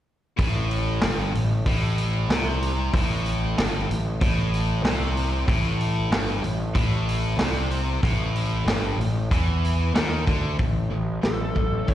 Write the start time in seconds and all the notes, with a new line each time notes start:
0.37 A1 A2, kick, open hi-hat
0.71 open hi-hat
1.01 G1 G2, snare, open hi-hat
1.34 A1 A2, open hi-hat
1.66 A1 A2, kick, open hi-hat
1.98 open hi-hat
2.29 C2 C3, snare, open hi-hat
2.62 open hi-hat
2.93 A1 A2, kick, open hi-hat
3.26 open hi-hat
3.57 G1 G2, snare, open hi-hat
3.89 A1 A2, open hi-hat
4.21 A1 A2, kick, open hi-hat
4.54 open hi-hat
4.83 C2 C3, snare, open hi-hat
5.17 open hi-hat
5.47 A1 A2, kick, open hi-hat
5.81 open hi-hat
6.11 G1 G2, snare, open hi-hat
6.43 A1 A2, open hi-hat
6.75 A1 A2, kick, open hi-hat
7.09 open hi-hat
7.37 C2 C3, snare, open hi-hat
7.71 open hi-hat
8.03 A1 A2, kick, open hi-hat
8.36 open hi-hat
8.65 G1 G2, snare, open hi-hat
8.97 A1 A2
9.01 open hi-hat
9.31 E2 E3, kick, open hi-hat
9.64 open hi-hat
9.94 D#2 D#3, snare, open hi-hat
10.26 D2 D3, kick, open hi-hat
10.59 A1 A2 E3, kick, open hi-hat
10.90 A1 A2 E3
11.22 A1 A2 F#3, snare, open hi-hat
11.26 A4
11.55 A1 A2 F#3, kick
11.88 A1 A2 E3 C#5, kick, open hi-hat